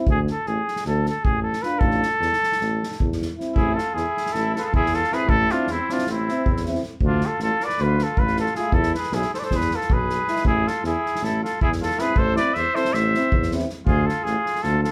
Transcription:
0.07 D2 G#4, kick
0.27 snare
0.31 A4
0.46 A1 G#4, snare
0.68 snare
0.76 snare
0.85 D2 A4, snare
1.06 A4, snare
1.24 A1 G#4, kick
1.43 A4
1.53 snare
1.62 D4 F4 B4, snare
1.79 A1 A4, kick
1.91 snare
2.03 snare
2.20 E2, snare
2.33 snare
2.43 snare
2.52 snare
2.61 A1, snare
2.83 snare
2.91 snare
3.00 E2, kick
3.12 snare
3.22 snare
3.37 C4 E4, snare
3.55 A1 E4 G#4, kick
3.74 F4 A4, snare
3.94 E2 E4 G#4, snare
4.17 snare
4.26 snare
4.33 A1 A4, snare
4.37 E4
4.55 F4 A4 B4, snare
4.63 F4 G#4 A4
4.72 E2 E4 G#4, kick
4.86 snare
4.93 F4 A4, snare
5.04 snare
5.11 C4 E4 G#4 B4, snare
5.27 A1 E4 A4, kick
5.49 C4 D4 E4 F4, snare
5.67 E2 C4, snare
5.72 E4
5.89 C4 D4 E4 F4, snare
5.98 snare
6.06 A1 C4, snare
6.12 E4
6.28 C4 E4, snare
6.45 E2, kick
6.56 snare
6.65 C4 E4, snare
6.75 snare
6.83 snare
7.01 D2, kick
7.06 D4 F4
7.21 snare
7.25 F4 A4
7.39 A1 A4, snare
7.44 F4
7.60 D5, snare
7.66 B4, snare
7.78 D2 B4, snare
7.85 F4
7.99 snare
8.03 F4 A4
8.17 A1 B4, kick
8.24 F4, snare
8.37 A4, snare
8.44 F4, snare
8.55 A3 F4 G#4, snare
8.60 E4
8.72 E2 A4, kick
8.77 E4
8.83 snare
8.94 G#4 B4, snare
9.03 snare
9.12 B1 E4 G#4, snare
9.22 snare
9.34 A4 B4 C5, snare
9.40 A4 D5, snare
9.44 C5
9.51 E2 G#4, kick, snare
9.56 B4
9.61 snare
9.71 F4, snare
9.76 A4
9.81 snare
9.90 B1 G#4 B4, kick
10.09 snare
10.28 G#3 E4, snare
10.36 snare
10.45 A1 E4 G#4, kick
10.67 F4 A4, snare
10.84 E2 E4 G#4, snare
11.06 snare
11.15 snare
11.22 A1 E4 A4, snare
11.43 F4 A4, snare
11.61 E2 E4 G#4, kick
11.72 snare
11.81 F4 A4, snare
11.91 snare
11.97 C4 E4 G#4 B4, snare
12.16 A1 A4 C5, kick
12.36 C4 E4 B4 D5, snare
12.54 E2 C5 E5, snare
12.75 C4 E4 A4 C5, snare
12.85 snare
12.92 A1 C5 E5, snare
13.14 C4 E4, snare
13.32 E2, kick
13.43 snare
13.51 C4 E4, snare
13.59 snare
13.69 snare
13.86 D2 F4 G#4, kick
14.06 F4 A4, snare
14.24 A1 F4 G#4, snare
14.46 snare
14.55 snare
14.62 D2 F4 A4, snare
14.83 F4 A4, snare

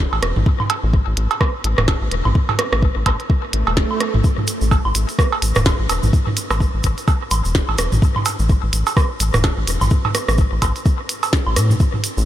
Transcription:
0.13 A1, cowbell
0.23 E1, cross-stick, closed hi-hat
0.36 A1, mid tom
0.46 kick
0.60 mid tom, low woodblock
0.70 closed hi-hat, cowbell
0.84 A1
0.93 kick
1.07 A1
1.17 A1, closed hi-hat
1.31 closed hi-hat, cowbell
1.41 kick, cross-stick, low woodblock
1.64 A1, closed hi-hat
1.78 E1, cross-stick, mid tom
1.88 kick, snare, cowbell
2.02 A1
2.11 E1, closed hi-hat
2.25 A1, mid tom, low woodblock
2.35 kick
2.49 mid tom, cowbell
2.59 cross-stick, closed hi-hat
2.73 A1, cross-stick
2.82 kick
2.96 A1
3.06 A1, kick, closed hi-hat, cowbell, low woodblock
3.20 closed hi-hat
3.30 kick, swell
3.53 A1, closed hi-hat
3.67 E1, cowbell
3.77 kick, snare
3.91 low woodblock
4.00 cross-stick, closed hi-hat
4.14 A1, mid tom
4.24 kick, shaker
4.38 mid tom
4.47 closed hi-hat, shaker
4.61 A1, shaker
4.71 kick, cowbell, shaker
4.85 A1, low woodblock
4.95 A1, closed hi-hat, shaker
5.09 closed hi-hat, shaker
5.19 kick, cross-stick, shaker
5.32 cowbell
5.42 A1, closed hi-hat, shaker
5.55 E1, cross-stick, mid tom, shaker
5.65 kick, snare, low woodblock, shaker
5.80 A1
5.89 E1, closed hi-hat, cowbell, shaker
6.03 A1, mid tom, shaker
6.13 kick, shaker
6.27 mid tom
6.37 closed hi-hat, shaker
6.50 A1, cross-stick, cowbell, low woodblock, shaker
6.60 kick, shaker
6.74 A1
6.83 A1, kick, closed hi-hat, shaker
6.98 closed hi-hat, shaker
7.08 kick, cowbell, shaker
7.31 A1, closed hi-hat, low woodblock, shaker
7.45 E1, shaker
7.55 kick, snare, shaker
7.69 A1, cowbell
7.78 E1, cross-stick, closed hi-hat, shaker
7.92 A1, mid tom, shaker
8.02 kick, shaker
8.16 mid tom, low woodblock
8.25 closed hi-hat, cowbell, shaker
8.39 A1, shaker
8.49 kick, shaker
8.63 A1
8.73 A1, closed hi-hat, shaker
8.87 closed hi-hat, cowbell, shaker
8.97 kick, cross-stick, low woodblock, shaker
9.20 A1, closed hi-hat, shaker
9.34 E1, cross-stick, mid tom, shaker
9.44 kick, snare, cowbell, shaker
9.58 A1
9.67 E1, closed hi-hat, shaker
9.81 A1, mid tom, low woodblock, shaker
9.90 kick, shaker
10.05 mid tom, cowbell
10.15 cross-stick, closed hi-hat, shaker
10.28 A1, cross-stick, shaker
10.38 kick, shaker
10.52 A1
10.62 A1, kick, closed hi-hat, cowbell, low woodblock, shaker
10.76 closed hi-hat, shaker
10.85 kick, shaker
11.09 closed hi-hat, shaker
11.23 closed hi-hat, cowbell, shaker
11.33 kick, snare, shaker
11.47 A1, low woodblock
11.56 A2, cross-stick, closed hi-hat, shaker
11.70 mid tom, shaker
11.80 kick, shaker
11.94 mid tom
12.04 closed hi-hat, shaker
12.17 A1, shaker

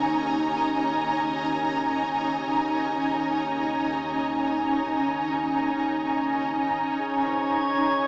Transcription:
Already playing: D#2 C#4 D#4 G#5 A#5
6.98 D#2 G#4 C#5
7.25 C5
7.53 A#4

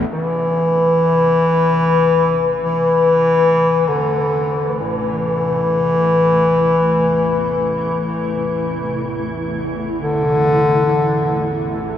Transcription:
Already playing: E2 C3 G3 D4 A4
0.11 A1 E2 E3
2.05 A3
2.64 E3
3.88 D3
4.30 E4
4.81 A2
5.12 E3
10.01 C3 D3
11.55 D4
11.65 G3

